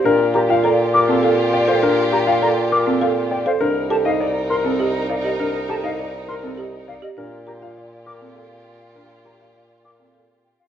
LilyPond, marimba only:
\new Staff \with { instrumentName = "Marimba" } { \time 3/4 \key g \minor \tempo 4 = 101 d'16 r16 bes'16 f'16 a'16 r8 c'16 a'16 r8 a'16 | d'16 r16 bes'16 f'16 a'16 r8 c'16 a'16 r8 a'16 | d'16 r16 a'16 ees'16 r8. c'16 g'16 r8 g'16 | d'16 r16 a'16 ees'16 r8. c'16 g'16 r8 g'16 |
d'16 r16 bes'16 f'16 r8. c'16 a'16 r8. | d'16 r16 bes'16 f'16 r8. c'16 a'16 r8. | }